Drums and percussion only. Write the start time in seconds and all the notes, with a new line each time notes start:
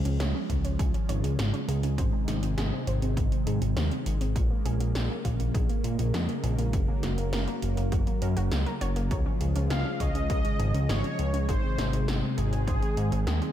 0.05 closed hi-hat
0.20 snare, closed hi-hat
0.50 kick, closed hi-hat
0.65 closed hi-hat
0.79 kick, closed hi-hat
0.94 closed hi-hat
1.09 closed hi-hat
1.24 closed hi-hat
1.39 snare, closed hi-hat
1.54 closed hi-hat
1.69 closed hi-hat
1.83 closed hi-hat
1.98 kick, closed hi-hat
2.28 snare, closed hi-hat
2.43 closed hi-hat
2.58 snare, closed hi-hat
2.87 closed hi-hat
3.02 closed hi-hat
3.17 kick, closed hi-hat
3.32 closed hi-hat
3.47 closed hi-hat
3.62 closed hi-hat
3.77 snare, closed hi-hat
3.91 closed hi-hat
4.06 closed hi-hat
4.21 closed hi-hat
4.36 kick, closed hi-hat
4.66 closed hi-hat
4.80 closed hi-hat
4.95 snare, closed hi-hat
5.25 kick, closed hi-hat
5.40 closed hi-hat
5.54 kick, closed hi-hat
5.69 closed hi-hat
5.84 closed hi-hat
5.99 closed hi-hat
6.14 snare, closed hi-hat
6.29 closed hi-hat
6.44 closed hi-hat
6.59 closed hi-hat
6.73 kick, closed hi-hat
7.03 snare, closed hi-hat
7.18 closed hi-hat
7.33 snare, closed hi-hat
7.48 closed hi-hat
7.62 closed hi-hat
7.77 closed hi-hat
7.92 kick, closed hi-hat
8.07 closed hi-hat
8.22 closed hi-hat
8.37 closed hi-hat
8.52 snare, closed hi-hat
8.66 closed hi-hat
8.81 closed hi-hat
8.96 closed hi-hat
9.11 kick, closed hi-hat
9.41 closed hi-hat
9.56 closed hi-hat
9.70 snare, closed hi-hat
10.00 kick, closed hi-hat
10.15 closed hi-hat
10.30 kick, closed hi-hat
10.45 closed hi-hat
10.60 closed hi-hat
10.74 closed hi-hat
10.89 snare, closed hi-hat
11.04 closed hi-hat
11.19 closed hi-hat
11.34 closed hi-hat
11.49 kick, closed hi-hat
11.79 snare, closed hi-hat
11.93 closed hi-hat
12.08 snare, closed hi-hat
12.38 closed hi-hat
12.53 closed hi-hat
12.68 kick, closed hi-hat
12.82 closed hi-hat
12.97 closed hi-hat
13.12 closed hi-hat
13.27 snare, closed hi-hat
13.42 closed hi-hat